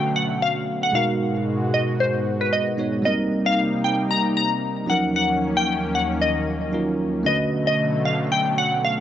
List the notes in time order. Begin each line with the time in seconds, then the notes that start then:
Already playing: B2 D3 F#3 A3 C#4 F#4 B4 G5
0.16 F#5
0.42 F5
0.83 F#5
0.92 G#2 B2 G#3 D#4 F#4 F5
0.96 A#4
1.74 D#5
2.00 C5
2.41 B4
2.53 D#5
2.77 G#3 B3 D#4 F#4 C#5
3.02 C3 G3 A#3 C4 D#4 D#5
3.07 A#4
3.46 F5
3.84 G5
4.11 A#5
4.37 A#5
4.86 D#2 D#3 F3 F#3 A#3 C#4 D#4 F#5
4.91 A#4
5.16 F#5
5.57 G5
5.95 F#5
6.21 D#5
6.72 F#3 C#4 D#4 F4 A#4
7.23 B2 D3 F#3 A3 C#4 F#4 D#5
7.28 B4
7.67 D#5
8.05 F5
8.32 G5
8.58 F#5
8.85 F5